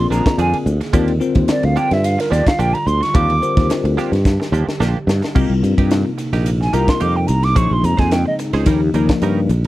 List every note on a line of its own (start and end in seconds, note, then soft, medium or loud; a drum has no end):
0.00 5.32 D3 medium
0.00 0.94 A#3 medium
0.00 0.72 C4 medium
0.00 0.72 F4 medium
0.00 0.94 G#4 medium
0.00 0.73 A#4 medium
0.00 0.73 D5 medium
0.10 0.24 A#1 medium
0.10 0.26 F3 medium
0.10 0.25 A#3 medium
0.10 0.25 D4 medium
0.10 0.25 G#4 medium
0.10 0.37 A#5 medium
0.10 snare soft
0.10 hi-hat pedal medium
0.26 muted clean electric guitar stroke soft
0.26 kick medium
0.26 snare loud
0.26 ride medium
0.38 0.52 F2 medium
0.38 0.56 F3 medium
0.38 0.56 A#3 medium
0.38 0.57 D4 medium
0.38 0.57 G#4 medium
0.38 0.57 G#5 medium
0.38 hi-hat pedal medium
0.38 ride medium
0.53 muted fretless electric bass stroke soft
0.53 ride medium
0.66 0.80 D2 loud
0.66 muted clean electric guitar stroke soft
0.66 hi-hat pedal medium
0.81 muted clean electric guitar stroke medium
0.81 snare soft
0.81 ride medium
0.93 1.19 D#2 medium
0.93 1.11 F3 medium
0.93 5.31 G3 medium
0.93 1.11 A#3 loud
0.93 1.13 C4 medium
0.93 1.11 D4 medium
0.93 3.12 F4 medium
0.93 1.13 F4 medium
0.93 1.11 G4 medium
0.93 1.13 A#4 medium
0.93 1.13 D5 medium
0.93 kick loud
0.93 hi-hat pedal medium
0.93 ride medium
1.08 ride medium
1.20 1.95 C4 medium
1.20 1.95 F4 medium
1.20 1.95 A#4 medium
1.20 1.96 C5 loud
1.20 muted clean electric guitar stroke soft
1.20 hi-hat pedal medium
1.35 1.48 D#2 medium
1.35 kick medium
1.35 ride medium
1.48 1.66 D5 medium
1.48 muted clean electric guitar stroke soft
1.48 snare loud
1.48 hi-hat pedal medium
1.48 ride medium
1.63 1.75 D2 medium
1.63 1.78 F5 medium
1.63 muted clean electric guitar stroke soft
1.63 ride medium
1.76 1.91 F3 medium
1.76 1.90 A#3 medium
1.76 1.90 D4 medium
1.76 1.89 G4 medium
1.76 1.95 G5 loud
1.76 hi-hat pedal medium
1.91 2.16 G2 medium
1.91 2.07 E5 medium
1.91 muted clean electric guitar stroke soft
1.91 snare soft
1.91 ride medium
2.04 2.22 F5 medium
2.04 hi-hat pedal medium
2.04 ride medium
2.18 2.33 A#4 medium
2.18 muted clean electric guitar stroke soft
2.18 snare soft
2.18 ride medium
2.30 2.45 D#2 medium
2.30 2.46 F3 medium
2.30 2.45 A#3 medium
2.30 2.45 D4 medium
2.30 2.45 G4 medium
2.30 2.49 D5 medium
2.30 snare soft
2.30 hi-hat pedal medium
2.46 2.61 F5 medium
2.46 muted clean electric guitar stroke soft
2.46 muted fretless electric bass stroke soft
2.46 kick medium
2.46 snare medium
2.46 ride medium
2.59 2.73 A#1 medium
2.59 2.77 F3 medium
2.59 2.77 A#3 medium
2.59 2.77 D4 medium
2.59 2.77 G4 medium
2.59 2.75 G5 medium
2.59 hi-hat pedal medium
2.59 ride medium
2.74 2.88 A#5 medium
2.74 ride medium
2.87 3.00 D2 loud
2.87 3.04 C6 loud
2.87 muted clean electric guitar stroke soft
2.87 hi-hat pedal medium
3.01 3.17 C#6 loud
3.01 muted clean electric guitar stroke soft
3.01 snare soft
3.01 ride medium
3.14 3.40 D#2 medium
3.14 3.32 F3 medium
3.14 3.32 A#3 medium
3.14 3.33 C4 medium
3.14 3.32 D4 medium
3.14 3.33 F4 medium
3.14 5.33 G4 medium
3.14 3.32 G4 medium
3.14 3.34 A#4 medium
3.14 3.34 F5 medium
3.14 3.70 D6 loud
3.14 kick loud
3.14 hi-hat pedal medium
3.14 ride medium
3.30 ride medium
3.41 4.16 C4 medium
3.41 4.16 F4 medium
3.41 4.16 A#4 medium
3.41 4.16 C5 medium
3.41 muted clean electric guitar stroke soft
3.41 hi-hat pedal medium
3.57 3.69 D#2 loud
3.57 kick medium
3.57 snare soft
3.57 ride medium
3.70 muted clean electric guitar stroke soft
3.70 snare loud
3.70 hi-hat pedal medium
3.70 ride medium
3.84 3.96 D2 medium
3.84 muted clean electric guitar stroke soft
3.84 ride medium
3.97 4.12 F3 medium
3.97 4.12 A#3 medium
3.97 4.12 D4 medium
3.97 4.11 G4 medium
3.97 snare soft
3.97 hi-hat pedal medium
4.12 4.37 G2 medium
4.12 muted clean electric guitar stroke soft
4.12 snare soft
4.12 ride medium
4.25 kick medium
4.25 snare medium
4.25 hi-hat pedal medium
4.40 muted clean electric guitar stroke medium
4.40 snare medium
4.52 4.66 D#2 loud
4.52 4.67 F3 medium
4.52 4.67 A#3 medium
4.52 4.67 D4 medium
4.52 4.66 G4 medium
4.52 hi-hat pedal medium
4.67 muted clean electric guitar stroke soft
4.67 muted fretless electric bass stroke soft
4.67 snare medium
4.80 4.94 A#1 medium
4.80 4.98 F3 medium
4.80 4.98 A#3 loud
4.80 4.98 D4 medium
4.80 4.98 G4 loud
4.80 snare medium
4.80 hi-hat pedal medium
5.07 5.21 G2 loud
5.07 muted clean electric guitar stroke medium
5.07 snare loud
5.07 hi-hat pedal medium
5.22 muted clean electric guitar stroke soft
5.22 snare medium
5.34 5.49 C2 medium
5.34 7.54 C3 medium
5.34 6.09 G3 medium
5.34 5.53 A#3 medium
5.34 7.54 A#3 medium
5.34 6.09 C4 medium
5.34 5.53 D#4 medium
5.34 9.67 D#4 loud
5.34 6.09 F4 medium
5.34 5.53 G4 medium
5.34 6.09 A#4 medium
5.34 kick loud
5.34 crash loud
5.50 5.62 C2 medium
5.63 5.77 G2 medium
5.63 muted clean electric guitar stroke soft
5.63 hi-hat pedal medium
5.63 ride medium
5.78 6.03 G2 medium
5.78 5.90 D#4 soft
5.78 5.90 G4 medium
5.78 kick medium
5.78 ride medium
5.91 muted clean electric guitar stroke soft
5.91 snare loud
5.91 hi-hat pedal medium
5.91 ride medium
6.05 muted clean electric guitar stroke soft
6.18 muted clean electric guitar stroke soft
6.18 snare soft
6.18 hi-hat pedal medium
6.18 ride medium
6.33 6.69 A#1 medium
6.33 6.49 A#3 medium
6.33 6.49 D#4 medium
6.33 6.49 G4 medium
6.33 snare soft
6.33 ride medium
6.46 hi-hat pedal medium
6.46 ride medium
6.61 6.75 G#5 medium
6.61 muted clean electric guitar stroke soft
6.61 snare soft
6.73 6.87 C2 medium
6.73 7.28 G3 medium
6.73 6.88 A#3 medium
6.73 7.28 C4 medium
6.73 6.88 D#4 medium
6.73 7.28 F4 medium
6.73 6.87 G4 medium
6.73 7.29 A#4 medium
6.73 6.91 A#5 medium
6.73 hi-hat pedal medium
6.73 ride medium
6.88 7.03 C6 medium
6.88 muted clean electric guitar stroke soft
6.88 kick medium
6.88 snare loud
6.88 ride medium
7.00 7.26 F2 medium
7.00 7.18 A#3 medium
7.00 7.18 D#4 medium
7.00 7.18 G4 medium
7.00 7.18 D6 loud
7.00 hi-hat pedal medium
7.00 ride medium
7.16 7.29 G5 medium
7.27 7.56 C2 medium
7.27 7.46 A#5 medium
7.27 muted clean electric guitar stroke soft
7.27 hi-hat pedal medium
7.27 ride medium
7.43 7.59 D6 loud
7.43 muted clean electric guitar stroke soft
7.43 snare soft
7.43 ride medium
7.56 7.70 A#1 medium
7.56 9.67 C#3 medium
7.56 8.30 F3 medium
7.56 8.66 G#3 medium
7.56 8.30 A#3 medium
7.56 8.66 C4 medium
7.56 7.73 C#4 medium
7.56 7.73 D#4 medium
7.56 8.30 D#4 medium
7.56 7.73 G#4 medium
7.56 8.30 G#4 medium
7.56 7.74 C5 medium
7.56 7.74 C#6 medium
7.56 kick loud
7.56 hi-hat pedal medium
7.56 ride medium
7.71 7.83 A#1 medium
7.71 7.87 C6 medium
7.83 7.97 F2 medium
7.83 8.01 A#5 medium
7.83 muted clean electric guitar stroke soft
7.83 hi-hat pedal medium
7.83 ride medium
7.97 8.24 F2 medium
7.97 8.10 D#4 soft
7.97 8.10 G#4 medium
7.97 8.10 C5 medium
7.97 8.14 G#5 medium
7.97 kick medium
7.97 snare soft
7.97 ride medium
8.11 8.27 G5 medium
8.11 snare loud
8.11 hi-hat pedal medium
8.11 ride medium
8.26 8.35 D#5 medium
8.26 muted clean electric guitar stroke soft
8.39 muted clean electric guitar stroke soft
8.39 snare soft
8.39 hi-hat pedal medium
8.39 ride medium
8.53 8.65 C#2 medium
8.53 8.66 C#4 medium
8.53 8.66 D#4 medium
8.53 8.66 G#4 medium
8.53 8.67 C5 medium
8.53 snare soft
8.53 ride medium
8.66 8.92 D#2 loud
8.66 8.89 F3 medium
8.66 8.81 G3 medium
8.66 9.67 G3 medium
8.66 8.89 A#3 medium
8.66 8.81 C#4 medium
8.66 8.89 D#4 medium
8.66 8.81 D#4 medium
8.66 8.90 G4 loud
8.66 8.81 A#4 medium
8.66 kick medium
8.66 hi-hat pedal medium
8.66 ride medium
8.82 muted clean electric guitar stroke medium
8.94 9.08 D#2 medium
8.94 9.50 F3 medium
8.94 9.09 G3 medium
8.94 9.50 A#3 medium
8.94 9.09 C#4 medium
8.94 9.09 D#4 medium
8.94 9.50 D#4 medium
8.94 9.08 A#4 medium
8.94 9.50 A#4 medium
8.94 hi-hat pedal medium
8.94 ride medium
9.09 muted clean electric guitar stroke medium
9.09 kick medium
9.09 snare loud
9.09 ride medium
9.22 9.47 G2 medium
9.22 9.40 G3 medium
9.22 9.40 C#4 medium
9.22 9.40 D#4 loud
9.22 9.40 A#4 loud
9.22 hi-hat pedal medium
9.22 ride medium
9.49 9.67 A#1 medium
9.49 muted clean electric guitar stroke soft
9.49 hi-hat pedal medium
9.49 ride medium